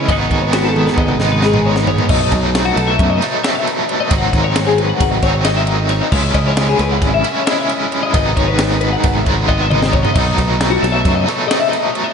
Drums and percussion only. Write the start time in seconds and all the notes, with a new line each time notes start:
0.09 kick, ride
0.31 kick, ride
0.53 snare, ride
0.76 high tom
0.87 snare
0.98 kick
1.08 mid tom
1.20 snare
1.43 snare
1.54 mid tom
1.76 snare
1.87 floor tom
1.98 floor tom
2.09 kick, crash
2.32 kick, snare, ride
2.55 snare, ride
2.77 ride
2.99 kick, ride
3.22 snare, ride
3.44 snare, ride
3.67 ride
3.89 ride
4.11 kick, ride
4.33 kick, snare, ride
4.56 snare, ride
4.78 ride
5.00 kick, ride
5.22 kick, snare, ride
5.45 snare, ride
5.67 ride
5.89 snare, ride
6.12 kick, crash
6.34 kick, ride
6.57 snare, ride
6.79 snare, ride
7.02 kick, snare, ride
7.24 ride
7.47 snare, ride
7.69 ride
7.92 ride
8.14 kick, ride
8.37 kick, ride
8.59 snare, ride
8.81 ride
9.04 kick, ride
9.26 kick, ride
9.49 kick
9.71 mid tom
9.82 snare
9.93 kick
10.05 floor tom
10.15 kick, crash, ride
10.38 kick, snare, ride
10.61 snare, ride
10.84 snare, ride
11.05 kick, snare, ride
11.28 snare, ride
11.51 snare, ride
11.73 snare, ride
11.95 ride